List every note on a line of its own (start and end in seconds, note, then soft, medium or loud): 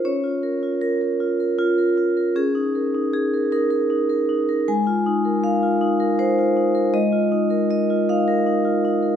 0.05 2.33 C#4 medium
0.05 0.83 C#5 medium
0.24 0.55 F4 soft
0.43 0.74 A#4 medium
0.63 1.19 F4 soft
0.81 1.00 A#4 medium
1.01 1.33 A#4 soft
1.20 1.52 F4 medium
1.40 1.72 A#4 medium
1.58 1.96 F4 medium
1.78 2.10 A#4 soft
1.97 2.29 F4 medium
2.17 2.37 A#4 medium
2.36 4.62 C#4 medium
2.36 3.12 G#4 medium
2.55 2.87 D#4 medium
2.75 3.06 A#4 medium
2.95 3.51 D#4 medium
3.13 3.52 G#4 medium
3.34 3.51 A#4 medium
3.52 3.82 D#4 medium
3.52 3.69 A#4 medium
3.71 4.01 A#4 medium
3.90 4.21 D#4 medium
4.09 4.40 A#4 medium
4.29 4.60 D#4 medium
4.49 4.68 A#4 medium
4.68 6.91 G#3 medium
4.68 5.45 G#5 medium
4.87 5.18 F4 medium
5.06 5.37 D#4 medium
5.25 5.86 A#4 medium
5.44 6.19 F5 medium
5.63 5.93 F4 medium
5.81 6.12 D#4 medium
6.00 6.30 A#4 medium
6.19 6.49 D#4 medium
6.19 6.94 C5 medium
6.39 6.68 F4 medium
6.57 6.87 D#4 medium
6.75 6.94 A#4 medium
6.94 9.16 G#3 medium
6.94 7.69 D#5 medium
7.13 7.44 F4 medium
7.32 7.63 D#4 medium
7.50 8.12 A#4 medium
7.71 8.09 D#5 medium
7.90 8.20 F4 medium
8.09 8.39 D#4 medium
8.09 8.84 F5 medium
8.28 8.58 A#4 medium
8.46 8.76 D#4 medium
8.65 8.95 F4 medium
8.85 9.15 D#4 medium
9.03 9.16 A#4 medium